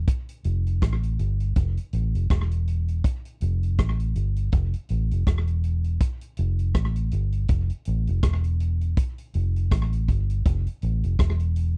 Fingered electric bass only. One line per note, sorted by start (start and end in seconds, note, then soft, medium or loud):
0.45 0.80 F1 loud
0.83 1.17 A1 medium
1.20 1.54 G1 medium
1.57 1.76 F1 medium
1.93 2.13 A1 medium
2.15 2.30 F1 medium
2.31 3.01 E1 medium
3.42 3.76 F1 loud
3.79 4.14 A1 medium
4.16 4.51 G1 medium
4.53 4.73 F1 loud
4.91 5.10 A1 medium
5.12 5.26 F1 medium
5.27 5.97 E1 loud
6.39 6.73 F1 loud
6.76 7.10 A1 medium
7.13 7.47 G1 medium
7.50 7.69 F1 medium
7.88 8.07 A1 medium
8.09 8.23 F1 medium
8.24 8.94 E1 medium
9.35 9.69 F1 medium
9.72 10.07 A1 medium
10.09 10.43 G1 medium
10.46 10.66 F1 loud
10.83 11.03 A1 medium
11.04 11.19 F1 medium
11.20 11.77 E1 loud